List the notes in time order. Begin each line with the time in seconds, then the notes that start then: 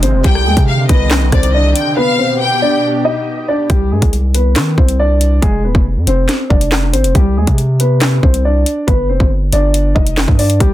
Already playing: C3 G#3 F4
0.02 G#1 C4 C5, closed hi-hat
0.14 F1
0.24 C2 D3 D#3 G3 G4 G5, kick, closed hi-hat
0.35 cross-stick
0.46 D#2 G#3 G#4
0.57 C3, kick, closed hi-hat
0.68 F5
0.89 C2 B3 B4 D#5, kick, closed hi-hat
1.11 snare, clap
1.22 B1
1.32 C2 C4 C5 D5, kick, cross-stick, closed hi-hat
1.43 closed hi-hat
1.54 D4 D5 D#5
1.75 G5, closed hi-hat
1.97 B2 B3 G4 B4 F5
2.18 C4 C5
2.40 G5
2.62 D4 D5
3.05 D#4 D#5
3.48 D4 D5
3.70 C2 G3 G4, kick, closed hi-hat
3.91 G2 G#3 G#4
4.02 C2, kick, closed hi-hat
4.13 closed hi-hat
4.35 B3 B4, closed hi-hat
4.56 D#3, snare, clap, closed hi-hat
4.78 C2 C4 C5, kick
4.88 closed hi-hat
5.00 D4 D5
5.21 closed hi-hat
5.42 F1 G#3 G#4, kick, closed hi-hat
5.64 D#1 B3 B4
5.75 F1, kick
5.96 F2
6.07 F1 C4 C5, closed hi-hat
6.29 snare, closed hi-hat
6.50 F1 D4 D5, kick
6.61 closed hi-hat
6.72 snare, clap
6.93 G#1 C4 C5, closed hi-hat
7.04 F1, closed hi-hat
7.15 C2 G3 G4, kick, closed hi-hat
7.36 D#2 G#3 G#4
7.47 C3, kick, closed hi-hat
7.58 closed hi-hat
7.80 B3 B4, closed hi-hat
8.01 snare, clap, closed hi-hat
8.23 C2 C4 C5, kick
8.34 closed hi-hat
8.45 D4 D5
8.66 closed hi-hat
8.87 G1 B3 B4, kick, closed hi-hat
9.09 F1 C4 C5
9.20 G1, kick
9.53 G1 D4 D5, closed hi-hat
9.74 closed hi-hat
9.95 F1 D#4 D#5, kick
10.07 closed hi-hat
10.17 snare, clap
10.28 G2, kick
10.39 D4 D5, open hi-hat
10.50 closed hi-hat
10.60 C2 G3 G4, kick, closed hi-hat